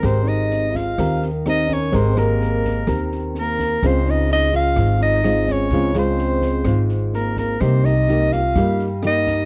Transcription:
<<
  \new Staff \with { instrumentName = "Soprano saxophone" } { \time 4/4 \key aes \major \tempo 4 = 127 c''8 ees''4 f''4 r8 ees''8 des''8 | c''8 bes'2 r8 bes'4 | c''8 ees''8 ees''8 f''4 ees''4 des''8~ | des''8 c''2 r8 bes'8 bes'8 |
c''8 ees''4 f''4 r8 ees''4 | }
  \new Staff \with { instrumentName = "Trombone" } { \time 4/4 \key aes \major c'8 ees'4 f'4 r8 ees'8 des'8 | c'8 bes2 r8 bes4 | c'8 ees'8 ees'8 f'4 ees'4 des'8~ | des'8 c'2 r8 bes8 bes8 |
c'8 ees'4 f'4 r8 ees'4 | }
  \new Staff \with { instrumentName = "Nylon-string guitar" } { \time 4/4 \key aes \major << { <c' g' bes'>2 <c' g' bes'>8 r8 <c' g' bes'>8 r8 | <c' g' bes'>8 <c' g' bes'>4. <c' g' bes'>2 | <aes c' f'>4. r8 <aes c' f'>4 <aes c' f'>4 | <aes c' f'>8 <aes c' f'>4. <aes c' f'>2 |
<bes ees' g'>8 r8 <bes ees' g'>8 r8 <bes ees' g'>8 r8 <bes ees' g'>4 | } \\ { aes2 ees2 | aes2 ees2 | des2 aes,2 | des2 aes,2 |
c2 g2 | } >> }
  \new Staff \with { instrumentName = "Upright bass" } { \clef bass \time 4/4 \key aes \major aes,,2 ees,2 | aes,,2 ees,2 | des,2 aes,,2 | des,2 aes,,2 |
c,2 g,2 | }
  \new DrumStaff \with { instrumentName = "Drums" } \drummode { \time 4/4 <bd ss sn>8 sn8 sn8 <bd sn>8 <bd ss sn>8 sn8 <ss sn>8 <bd sn>8 | <bd sn>8 <ss sn>8 sn8 <bd sn>8 <bd ss sn>8 sn8 sn8 <bd sn>8 | <bd ss sn>8 sn8 sn8 <bd sn>8 <bd ss sn>8 sn8 <ss sn>8 <bd sn>8 | <bd sn>8 <ss sn>8 sn8 <bd sn>8 <bd ss sn>8 sn8 sn8 <bd sn>8 |
<bd ss sn>8 sn8 sn8 <bd sn>8 <bd ss sn>8 sn8 <ss sn>8 <bd sn>8 | }
>>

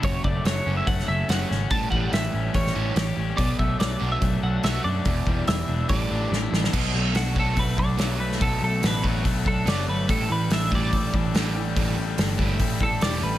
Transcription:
<<
  \new Staff \with { instrumentName = "Clean electric guitar" } { \time 4/4 \key b \minor \tempo 4 = 143 cis''8 d''8 cis''8. e''16 fis''8 e''8 fis''4 | a''8 fis''8 e''4 cis''4. r8 | d''8 e''8 d''8. e''8. fis''8 e''8 d''8~ | d''4 e''4 d''4. r8 |
r4 fis'8 a'8 b'8 d''4 b'8 | a'8 a'8 b'8 r4 a'8 d''8 b'8 | a'8 b'8 e''8 d''4 r4. | r2 r8 a'8 d''8 b'8 | }
  \new Staff \with { instrumentName = "Overdriven electric guitar" } { \time 4/4 \key b \minor fis,8 a8 fis8 cis'8 a8 cis'8 fis'8 cis'8 | a,8 g8 e8 cis'8 g8 cis'8 g'8 cis'8 | b,8 a8 fis8 d'8 a8 d'8 fis'8 d'8 | e,8 g8 e8 d'8 a,8 d'8 e'8 d'8 |
b,8 a8 d'8 fis'8 a8 d'8 fis8 a8 | b,8 a8 d'8 fis'8 a8 d'8 fis8 a8 | a,8 g8 d'8 e'8 g8 d'8 d8 g8 | a,8 g8 d'8 e'8 g8 d'8 d8 g8 | }
  \new Staff \with { instrumentName = "Overdriven electric guitar" } { \clef bass \time 4/4 \key b \minor <fis, cis fis>8 <fis, cis>8 <fis, cis>8 <fis, cis fis>8 <fis, cis>8 <fis, cis>8 <fis, cis fis>8 <fis, cis>8 | <a, e g>8 <a, e g>8 <a, e>8 <a, e>8 <a, e>8 <a, e g>8 <a, e>8 <a, e>8 | <b, fis b>8 <b, fis>8 <b, fis>8 <b, fis b>8 <b, fis>8 <b, fis>8 <b, fis b>8 <b, fis>8 | <e, b, e>8 <e, b, e>8 <e, b,>8 <e, b,>8 <a, e g>8 <a, e g>8 <a, e>8 <a, e>8 |
<b, fis b>8 <b, fis>8 <b, fis>8 <b, fis b>8 <b, fis>8 <b, fis>8 <b, fis b>8 <b, fis>8 | <b, fis b>8 <b, fis>8 <b, fis>8 <b, fis b>8 <b, fis>8 <b, fis>8 <b, fis b>8 <b, fis>8 | <a, e g>8 <a, e>8 <a, e>8 <a, e g>8 <a, e>8 <a, e>8 <a, e g>8 <a, e>8 | <a, e g>8 <a, e>8 <a, e>8 <a, e g>8 <a, e>8 <a, e>8 <a, e g>8 <a, e>8 | }
  \new Staff \with { instrumentName = "Picked electric bass" } { \clef bass \time 4/4 \key b \minor fis,,8 fis,,8 fis,,8 fis,,8 fis,,8 fis,,8 fis,,8 gis,,8 | a,,8 a,,8 a,,8 a,,8 a,,8 a,,8 a,,8 a,,8 | b,,8 b,,8 b,,8 b,,8 b,,8 b,,8 b,,8 fis,8 | e,,8 e,,8 e,,8 e,,8 a,,8 a,,8 a,,8 a,,8 |
b,,8 b,,8 b,,8 b,,8 b,,8 b,,8 b,,4 | b,,8 b,,8 a,,8 a,,8 b,,8 b,,8 fis,,8 g,,8 | a,,8 a,,8 a,,8 a,,8 a,,8 a,,8 a,,4 | a,,8 a,,8 g,,8 g,,8 a,,8 a,,8 e,,8 a,,8 | }
  \new DrumStaff \with { instrumentName = "Drums" } \drummode { \time 4/4 <hho bd>8 bd8 <hho sn>4 <hho bd>16 sn8. <hho sn>8 sn8 | <hho bd>8 bd8 <hho sn>4 <hho bd>16 sn8. <hho sn>4 | <hho bd>8 bd8 <hho sn>4 <hho bd>4 <hho sn>4 | <hho bd>8 bd8 <hho sn>4 <hho bd>4 sn8 sn16 sn16 |
<cymc bd>4 <hho sn>8 bd8 <hho bd>8 bd8 <hho sn>8. sn16 | <hho bd>4 <hho sn>8 bd8 <hho bd>8 bd8 <hho sn>4 | <hho bd>4 <hho sn>8 bd8 <hho bd>8 bd8 <hho sn>4 | <hho bd>4 <hho sn>8 bd8 <hho bd>8 bd8 <hho sn>4 | }
>>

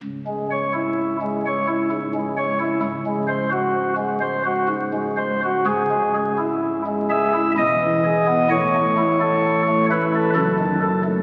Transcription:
<<
  \new Staff \with { instrumentName = "Pipe organ" } { \time 3/4 \key cis \minor \tempo 4 = 64 << { r2. | r2. | gis'4. e''8 dis''4 | cis''4. b'8 a'4 | } \\ { cis,16 gis16 cis''16 e'8 gis16 cis''16 e'16 gis,16 gis16 cis''16 e'16 | cis,16 gis16 bis'16 fis'8 gis16 bis'16 fis'16 gis,16 gis16 bis'16 fis'16 | cis,16 gis16 gis'16 e'8 gis16 gis'16 e'16 e,16 e16 gis'16 b16 | a,16 a16 e'16 a'8 a16 e'16 a'16 fis,16 dis16 a'16 a16 | } >> }
  \new Staff \with { instrumentName = "Pipe organ" } { \clef bass \time 3/4 \key cis \minor cis,,2. | cis,,2. | cis,,2 e,,4 | a,,2 fis,,4 | }
>>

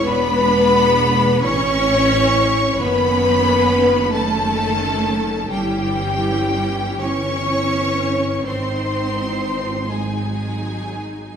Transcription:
<<
  \new Staff \with { instrumentName = "Violin section" } { \time 6/8 \key a \lydian \tempo 4. = 43 b''4. cis'''4. | \key cis \minor b''4. a''4. | g''4. cis'''4. | bis''4. gis''4. | }
  \new Staff \with { instrumentName = "Violin section" } { \time 6/8 \key a \lydian b'4. cis''4. | \key cis \minor b'4. a'4. | g'4. cis''4. | bis'4. gis'4. | }
  \new Staff \with { instrumentName = "Cello section" } { \time 6/8 \key a \lydian b4. cis'4. | \key cis \minor b4. a4. | g4. cis'4. | bis4. gis4. | }
  \new Staff \with { instrumentName = "Viola section" } { \clef bass \time 6/8 \key a \lydian << { d'4. cis'4. | \key cis \minor cis'4. cis'4. | cis'4. cis'4. | dis'4. dis'4. | } \\ { gis4. e4. | dis4. dis4. | e4. e4. | dis8. e8. fis4. | } >> }
  \new Staff \with { instrumentName = "Double bass section" } { \clef bass \time 6/8 \key a \lydian e,,4. a,,4. | \key cis \minor fis,,2. | g,,2. | gis,,2. | }
>>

